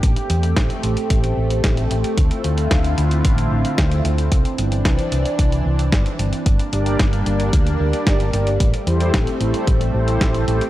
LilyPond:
<<
  \new Staff \with { instrumentName = "Analog polysynth" } { \time 4/4 \key a \phrygian \tempo 4 = 112 r1 | r1 | r1 | r8 <d' g' bes' d''>8 r8 <d' g' bes' d''>8 r8 <d' g' bes' d''>4 <d' g' bes' d''>8 |
r8 <e' g' a' c''>8 r8 <e' g' a' c''>8 r8 <e' g' a' c''>4 <e' g' a' c''>8 | }
  \new Staff \with { instrumentName = "Analog synth pad" } { \time 4/4 \key a \phrygian << { <c' g'>1 | <d e' f'>1 | d'1 | <bes d'>1 |
<a c'>1 | } \\ { a1~ | a1 | e1 | g1~ |
g1 | } >> }
  \new Staff \with { instrumentName = "Fingered electric bass" } { \clef bass \time 4/4 \key a \phrygian a,,8 e,8 a,,8 a,,8 a,,8 a,,8 a,,8 a,,8 | d,8 d,8 d,8 d,8 a,,8 a,,8 d,8 d,8 | c,8 g,,8 c,8 c,8 c,8 c,8 g,,8 g,,8 | g,,8 g,,8 g,,8 g,,8 d,8 d,8 g,,8 g,,8 |
a,,8 e,8 a,,8 a,,8 a,,8 a,,8 a,,8 a,,8 | }
  \new DrumStaff \with { instrumentName = "Drums" } \drummode { \time 4/4 <hh bd>16 hh16 hh16 hh16 <hh bd sn>16 hh16 hh16 hh16 <hh bd>16 hh8 hh16 <hh bd sn>16 hh16 hh16 hh16 | <hh bd>16 hh16 hh16 hh16 <hh bd sn>16 hh16 hh16 hh16 <hh bd>16 hh8 hh16 <hh bd sn>16 hh16 hh16 hh16 | <hh bd>16 hh16 hh16 hh16 <hh bd sn>16 hh16 hh16 hh16 <hh bd>16 hh8 hh16 <hh bd sn>16 hh16 hh16 hh16 | <hh bd>16 hh16 hh16 hh16 <hh bd sn>16 hh16 hh16 hh16 <hh bd>16 hh8 hh16 <hh bd sn>16 hh16 hh16 hh16 |
<hh bd>16 hh16 hh16 hh16 <hh bd sn>16 hh16 hh16 hh16 <hh bd>16 hh8 hh16 <hh bd sn>16 hh16 hh16 hh16 | }
>>